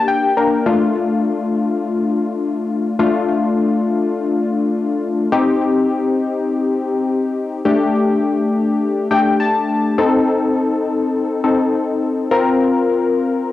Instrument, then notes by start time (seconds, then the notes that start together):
synth keys
Already playing: A#3 D4 G4
0.08 G5
0.37 A#3 D4 A#4
0.66 A3 D4 F4
2.99 A3 D4 F4
5.32 C4 D#4 G4
7.65 A3 D4 G4
9.11 A3 D4 G4 G5
9.40 A5
9.98 C4 D#4 A4
11.44 C4 D#4 A4
12.31 C4 F4 A#4